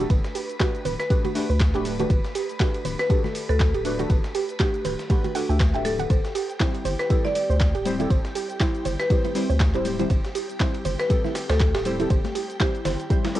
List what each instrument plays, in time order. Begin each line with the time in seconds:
Already playing: string machine B4 B5
0.00 synth stab A3 D4 F#4 G4 A4, cabasa
0.10 analog synth bass G1, synth arpeggio sound B4, kick, closed hi-hat, ride, cabasa
0.24 snare, closed hi-hat, cabasa
0.35 synth arpeggio sound G4, open hi-hat, ride, cabasa
0.50 closed hi-hat, cabasa
0.59 synth stab A3 D4 F#4 G4 B4, synth arpeggio sound F#4, kick, snare, clap, closed hi-hat, ride, cabasa
0.75 closed hi-hat, cabasa
0.85 analog synth bass D1, synth arpeggio sound B4, open hi-hat, ride, low conga, cabasa
0.99 marimba B4, snare, closed hi-hat, cabasa
1.09 synth stab A3 D4 F#4 G4 B4, synth arpeggio sound G4, kick, closed hi-hat, ride, cabasa
1.24 synth arpeggio sound F#4, ride, high conga, low conga, cabasa
1.35 synth stab A3 D4 F#4 G4 B4, snare, open hi-hat, cabasa
1.49 analog synth bass D2, synth arpeggio sound B4, cabasa
1.60 kick, snare, clap, closed hi-hat, ride, cabasa
1.74 analog synth bass D1, synth stab A3 D4 F#4 G4 B4, synth arpeggio sound G4, clap, closed hi-hat, cabasa
1.85 open hi-hat, ride, high conga, cabasa
1.99 synth stab A3 D4 F#4 G4 B4, synth arpeggio sound F#4, closed hi-hat, ride, low conga, cabasa
2.10 analog synth bass G1, synth arpeggio sound B4, kick, closed hi-hat, ride, cabasa
2.25 snare, closed hi-hat, cabasa
2.35 synth arpeggio sound G4, open hi-hat, ride, cabasa
2.50 closed hi-hat, cabasa
2.60 synth stab A3 D4 F#4 G4 B4, synth arpeggio sound F#4, kick, snare, clap, closed hi-hat, ride, cabasa
2.75 closed hi-hat, ride, cabasa
2.85 analog synth bass D1, synth arpeggio sound B4, open hi-hat, ride, low conga, cabasa
2.99 marimba B4, cross-stick, snare, closed hi-hat, cabasa
3.09 synth stab A3 D4 F#4 G4 A4, synth arpeggio sound G4, kick, closed hi-hat, ride, cabasa
3.24 synth arpeggio sound F#4, snare, high conga, low conga, cabasa
3.35 open hi-hat, ride, cabasa
3.49 analog synth bass D2, marimba A4, synth arpeggio sound B4, cabasa
3.60 kick, snare, clap, closed hi-hat, ride, cabasa
3.74 analog synth bass D1, synth arpeggio sound G4, closed hi-hat, ride, cabasa
3.85 synth stab A3 D4 F#4 G4 B4, open hi-hat, ride, high conga, cabasa
3.98 synth stab A3 D4 F#4 G4 A4, synth arpeggio sound F#4, closed hi-hat, ride, low conga, cabasa
4.10 analog synth bass G1, synth arpeggio sound B4, kick, closed hi-hat, ride, cabasa
4.24 snare, closed hi-hat, cabasa
4.35 synth arpeggio sound G4, open hi-hat, ride, cabasa
4.49 closed hi-hat, cabasa
4.59 synth stab A3 D4 F#4 G4 B4, synth arpeggio sound F#4, marimba G4, kick, snare, clap, closed hi-hat, ride, cabasa
4.74 closed hi-hat, cabasa
4.85 analog synth bass D1, synth arpeggio sound B4, open hi-hat, ride, low conga, cabasa
4.99 snare, closed hi-hat, cabasa
5.10 synth stab A3 D4 F#4 G4 B4, synth arpeggio sound G4, kick, closed hi-hat, ride, cabasa
5.24 synth arpeggio sound F#4, ride, high conga, low conga, cabasa
5.34 synth stab A3 D4 F#4 G4 A4, synth arpeggio sound F#5, snare, open hi-hat, cabasa
5.49 analog synth bass D2, synth stab A3 D4 F#4 G4 E5, synth arpeggio sound G5, cabasa
5.60 kick, snare, clap, closed hi-hat, ride, cabasa
5.74 analog synth bass D1, synth stab A3 D4 F#4 G4 E5, synth arpeggio sound G5, clap, closed hi-hat, high conga, cabasa
5.85 marimba A4, open hi-hat, ride, high conga, cabasa
5.99 synth arpeggio sound F#5, closed hi-hat, ride, low conga, cabasa
6.10 analog synth bass G1, string machine G4 G5, synth arpeggio sound C5, kick, closed hi-hat, ride, cabasa
6.24 snare, closed hi-hat, cabasa
6.35 synth arpeggio sound G4, open hi-hat, ride, cabasa
6.49 closed hi-hat, cabasa
6.59 synth stab G3 C4 E4 G4 C5, synth arpeggio sound E4, kick, snare, clap, closed hi-hat, ride, cabasa
6.74 closed hi-hat, ride, cabasa
6.85 analog synth bass G1, synth arpeggio sound C5, open hi-hat, ride, low conga, cabasa
6.99 marimba B4, cross-stick, snare, closed hi-hat, cabasa
7.09 synth stab G3 C4 E4 G4 A4, synth arpeggio sound G4, kick, closed hi-hat, ride, cabasa
7.24 synth arpeggio sound E4, marimba D5, snare, high conga, low conga, cabasa
7.35 marimba D5, open hi-hat, ride, cabasa
7.50 analog synth bass D2, synth arpeggio sound C5, cabasa
7.60 kick, snare, clap, closed hi-hat, ride, cabasa
7.74 analog synth bass D1, synth arpeggio sound G4, closed hi-hat, ride, cabasa
7.85 synth stab G3 C4 E4 G4 C5, open hi-hat, ride, high conga, cabasa
7.98 synth stab G3 C4 E4 G4 A4, synth arpeggio sound E4, closed hi-hat, ride, low conga, cabasa
8.10 analog synth bass G1, synth arpeggio sound C5, kick, closed hi-hat, ride, cabasa
8.24 snare, closed hi-hat, cabasa
8.35 synth arpeggio sound G4, open hi-hat, ride, cabasa
8.49 closed hi-hat, cabasa
8.60 synth stab G3 C4 E4 G4 C5, synth arpeggio sound E4, kick, snare, clap, closed hi-hat, ride, cabasa
8.74 closed hi-hat, cabasa
8.85 analog synth bass G1, synth arpeggio sound C5, open hi-hat, ride, low conga, cabasa
8.99 marimba B4, snare, closed hi-hat, cabasa
9.10 synth stab G3 C4 E4 G4 C5, synth arpeggio sound G4, kick, closed hi-hat, ride, cabasa
9.24 synth arpeggio sound E4, ride, high conga, low conga, cabasa
9.35 synth stab G3 C4 E4 G4 C5, snare, open hi-hat, cabasa
9.50 analog synth bass D2, synth arpeggio sound C5, cabasa
9.60 kick, snare, clap, closed hi-hat, ride, cabasa
9.74 analog synth bass D1, synth stab G3 C4 E4 G4 C5, synth arpeggio sound G4, clap, closed hi-hat, cabasa
9.85 open hi-hat, ride, high conga, cabasa
9.99 synth stab G3 C4 E4 G4 C5, synth arpeggio sound E4, closed hi-hat, ride, low conga, cabasa
10.10 analog synth bass G1, synth arpeggio sound C5, kick, closed hi-hat, ride, cabasa
10.24 snare, closed hi-hat, cabasa
10.35 synth arpeggio sound G4, open hi-hat, ride, cabasa
10.50 closed hi-hat, cabasa
10.60 synth stab G3 C4 E4 G4 C5, synth arpeggio sound E4, kick, snare, clap, closed hi-hat, ride, cabasa
10.74 closed hi-hat, ride, cabasa
10.85 analog synth bass G1, synth arpeggio sound C5, open hi-hat, ride, low conga, cabasa
10.99 marimba B4, cross-stick, snare, closed hi-hat, cabasa
11.09 synth stab G3 C4 E4 G4 A4, synth arpeggio sound G4, kick, closed hi-hat, ride, cabasa
11.24 synth arpeggio sound E4, snare, high conga, low conga, cabasa
11.35 snare, open hi-hat, ride, cabasa
11.49 analog synth bass D2, marimba A4, synth arpeggio sound C5, snare, ride, cabasa
11.60 kick, snare, clap, closed hi-hat, ride, cabasa
11.75 analog synth bass D1, synth arpeggio sound G4, snare, closed hi-hat, ride, cabasa
11.85 synth stab G3 C4 E4 G4 C5, open hi-hat, ride, high conga, cabasa
11.98 synth stab G3 C4 E4 G4 A4, synth arpeggio sound E4, closed hi-hat, ride, low conga, cabasa
12.10 analog synth bass G1, synth arpeggio sound C5, kick, closed hi-hat, ride, cabasa
12.24 snare, closed hi-hat, high conga, cabasa
12.35 synth arpeggio sound G4, open hi-hat, ride, cabasa
12.50 closed hi-hat, cabasa
12.60 synth stab G3 C4 E4 G4 C5, synth arpeggio sound E4, marimba G4, kick, snare, clap, closed hi-hat, ride, cabasa
12.75 closed hi-hat, cabasa
12.85 analog synth bass G1, synth arpeggio sound C5, snare, open hi-hat, ride, low conga, cabasa
13.00 closed hi-hat, cabasa
13.10 synth stab G3 C4 E4 G4 C5, synth arpeggio sound G4, kick, closed hi-hat, ride, cabasa
13.24 synth arpeggio sound E4, cross-stick, snare, closed hi-hat, ride, high conga, low conga, cabasa
13.35 synth stab G3 C4 E4 G4 A4, cross-stick, open hi-hat, cabasa